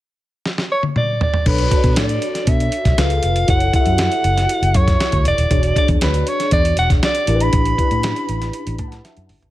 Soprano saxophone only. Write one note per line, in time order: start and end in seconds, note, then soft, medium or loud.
0.72 0.83 C#5 medium
0.97 1.20 D5 medium
1.23 1.49 D5 medium
1.48 1.98 B4 medium
1.99 2.50 D5 medium
2.49 3.01 E5 medium
2.99 3.49 F5 medium
3.50 3.73 F#5 medium
3.75 4.78 F#5 loud
4.77 5.26 C#5 medium
5.28 5.74 D5 medium
5.78 5.89 D5 medium
6.03 6.30 B4 medium
6.29 6.53 C#5 medium
6.53 6.76 D5 loud
6.79 6.90 F#5 medium
7.05 7.44 D5 loud
7.43 9.06 B5 medium